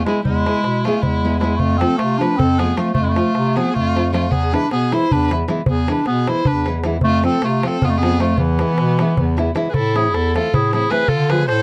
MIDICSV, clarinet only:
0, 0, Header, 1, 2, 480
1, 0, Start_track
1, 0, Tempo, 387347
1, 315, Time_signature, 7, 3, 24, 8
1, 14406, End_track
2, 0, Start_track
2, 0, Title_t, "Clarinet"
2, 0, Program_c, 0, 71
2, 58, Note_on_c, 0, 56, 70
2, 280, Note_off_c, 0, 56, 0
2, 289, Note_on_c, 0, 56, 87
2, 1050, Note_on_c, 0, 57, 74
2, 1068, Note_off_c, 0, 56, 0
2, 1255, Note_on_c, 0, 56, 71
2, 1274, Note_off_c, 0, 57, 0
2, 1717, Note_off_c, 0, 56, 0
2, 1725, Note_on_c, 0, 56, 77
2, 1935, Note_on_c, 0, 57, 90
2, 1953, Note_off_c, 0, 56, 0
2, 2201, Note_on_c, 0, 60, 95
2, 2219, Note_off_c, 0, 57, 0
2, 2447, Note_on_c, 0, 57, 89
2, 2466, Note_off_c, 0, 60, 0
2, 2704, Note_on_c, 0, 62, 85
2, 2722, Note_off_c, 0, 57, 0
2, 2942, Note_on_c, 0, 60, 99
2, 2960, Note_off_c, 0, 62, 0
2, 3211, Note_on_c, 0, 59, 86
2, 3229, Note_off_c, 0, 60, 0
2, 3435, Note_on_c, 0, 57, 77
2, 3453, Note_off_c, 0, 59, 0
2, 3633, Note_off_c, 0, 57, 0
2, 3641, Note_on_c, 0, 57, 93
2, 3751, Note_on_c, 0, 56, 80
2, 3770, Note_off_c, 0, 57, 0
2, 3826, Note_on_c, 0, 57, 88
2, 3845, Note_off_c, 0, 56, 0
2, 4420, Note_on_c, 0, 59, 94
2, 4439, Note_off_c, 0, 57, 0
2, 4642, Note_on_c, 0, 57, 81
2, 4661, Note_off_c, 0, 59, 0
2, 5117, Note_off_c, 0, 57, 0
2, 5128, Note_on_c, 0, 57, 77
2, 5347, Note_on_c, 0, 59, 95
2, 5365, Note_off_c, 0, 57, 0
2, 5622, Note_on_c, 0, 62, 84
2, 5641, Note_off_c, 0, 59, 0
2, 5842, Note_off_c, 0, 62, 0
2, 5854, Note_on_c, 0, 59, 99
2, 6103, Note_on_c, 0, 64, 86
2, 6121, Note_off_c, 0, 59, 0
2, 6343, Note_on_c, 0, 62, 95
2, 6362, Note_off_c, 0, 64, 0
2, 6586, Note_off_c, 0, 62, 0
2, 7050, Note_on_c, 0, 59, 78
2, 7305, Note_on_c, 0, 62, 84
2, 7323, Note_off_c, 0, 59, 0
2, 7515, Note_off_c, 0, 62, 0
2, 7522, Note_on_c, 0, 59, 97
2, 7790, Note_on_c, 0, 64, 89
2, 7808, Note_off_c, 0, 59, 0
2, 8018, Note_on_c, 0, 62, 82
2, 8036, Note_off_c, 0, 64, 0
2, 8263, Note_off_c, 0, 62, 0
2, 8722, Note_on_c, 0, 57, 112
2, 8961, Note_off_c, 0, 57, 0
2, 8986, Note_on_c, 0, 60, 100
2, 9217, Note_on_c, 0, 57, 93
2, 9236, Note_off_c, 0, 60, 0
2, 9491, Note_on_c, 0, 60, 88
2, 9510, Note_off_c, 0, 57, 0
2, 9715, Note_on_c, 0, 59, 102
2, 9734, Note_off_c, 0, 60, 0
2, 9794, Note_on_c, 0, 57, 85
2, 9813, Note_off_c, 0, 59, 0
2, 9893, Note_on_c, 0, 59, 105
2, 9912, Note_off_c, 0, 57, 0
2, 10167, Note_on_c, 0, 57, 89
2, 10186, Note_off_c, 0, 59, 0
2, 10386, Note_on_c, 0, 52, 100
2, 10405, Note_off_c, 0, 57, 0
2, 11848, Note_off_c, 0, 52, 0
2, 12006, Note_on_c, 0, 71, 69
2, 12071, Note_on_c, 0, 69, 107
2, 12090, Note_off_c, 0, 71, 0
2, 12347, Note_on_c, 0, 68, 89
2, 12365, Note_off_c, 0, 69, 0
2, 12576, Note_on_c, 0, 69, 95
2, 12594, Note_off_c, 0, 68, 0
2, 12828, Note_off_c, 0, 69, 0
2, 12835, Note_on_c, 0, 69, 84
2, 13071, Note_on_c, 0, 68, 93
2, 13090, Note_off_c, 0, 69, 0
2, 13303, Note_off_c, 0, 68, 0
2, 13311, Note_on_c, 0, 68, 90
2, 13524, Note_on_c, 0, 71, 101
2, 13542, Note_off_c, 0, 68, 0
2, 13741, Note_on_c, 0, 69, 97
2, 13760, Note_off_c, 0, 71, 0
2, 14014, Note_on_c, 0, 71, 86
2, 14032, Note_off_c, 0, 69, 0
2, 14217, Note_off_c, 0, 71, 0
2, 14224, Note_on_c, 0, 72, 88
2, 14406, Note_off_c, 0, 72, 0
2, 14406, End_track
0, 0, End_of_file